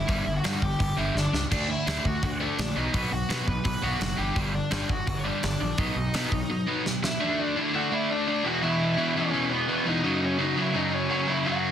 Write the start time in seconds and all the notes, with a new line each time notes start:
Already playing: E4 E5
0.08 G1 G2 D3 G3, kick, open hi-hat
0.26 G1 G2 D3
0.37 F#4 F#5
0.44 G2 D3 G3, snare, open hi-hat
0.62 G1 G2 D3 G4 G5, kick
0.80 G1 G2 D3, kick, open hi-hat
0.97 G1 G2 D3 G3 E4 E5
1.15 G1 G2 D3 D4 D5, snare
1.33 C#2 G2 D3, snare
1.51 D2 D3 A3 D4, kick, splash, crash
1.69 D3 A3 E4 E5
1.87 D2 D3 A3 D4, snare, open hi-hat
2.05 D2 D3 A3 F#4 F#5, kick
2.23 D2 D3 A3 F#4 F#5, kick, open hi-hat
2.40 D3 A3 D4 D5
2.59 A#1 D3 A3, snare, open hi-hat
2.76 B1 B2 F#3 B3 D#4 D#5
2.93 B1 B2 F#3 B3, kick, open hi-hat
3.11 B1 B2 F#3 F#4 F#5
3.29 B2 F#3 B3, snare, open hi-hat
3.47 B1 B2 F#3 B4 B5, kick
3.65 B1 B2 F#3 B4 B5, kick, open hi-hat
3.82 B1 B2 F#3 B3 F#4 F#5
4.00 F#1 B2 F#3, snare, open hi-hat
4.17 G1 G2 D3 G3 G4 G5
4.35 G1 G2 D3 G3, kick, open hi-hat
4.53 G2 D3 D4 D5
4.71 G1 G2 D3 G3, snare, open hi-hat
4.89 G1 G2 D3 F#4 F#5, kick
5.07 G1 G2 D3 F#4 F#5, kick, open hi-hat
5.17 C#5
5.25 G2 D3 G3 D4 D5
5.42 G1 G2 D3, snare, open hi-hat
5.60 A#1 G2 D3 D4 D5
5.78 B1 B2 F#3 B3 D#4 D#5, kick, open hi-hat
5.96 B1 B2 F#3
6.14 B2 F#3 B3, snare, open hi-hat
6.32 B1 B2 F#3, kick
6.50 B2 F#3
6.67 B2 F#3 B3
6.85 B2 F#3, snare
7.03 B2 F#3 E4 E5, snare
7.20 D3 A3 D4
7.39 D4 D5
7.56 D3 A3 D4 E4 E5
7.73 D3 A3 D4 F#4 F#5
7.91 D3 A3 D4 E4 E5
8.10 D4 D5
8.27 D3 A3 D4 D5
8.43 E2 B2 E3 F#4 F#5
8.62 E2 B2 E3 E4 E5
8.97 E2 B2 E3
9.15 E2 B2 E3 C#4 C#5
9.33 E2 B2 E3
9.52 B3 B4
9.68 E2 B2 E3
9.86 E2 B2 E3 D#4 D#5
10.04 F#2 C#3 F#3
10.24 C#4 C#5
10.39 F#2 C#3 F#3 D#4 D#5
10.57 F#2 C#3 F#3 E4 E5
10.74 F#2 C#3 F#3 D#4 D#5
10.93 C#4 C#5
11.10 F#2 C#3 F#3 C#4 C#5
11.28 F#2 C#3 F#3 E4 E5
11.46 F#2 C#3 F#3 F#4 F#5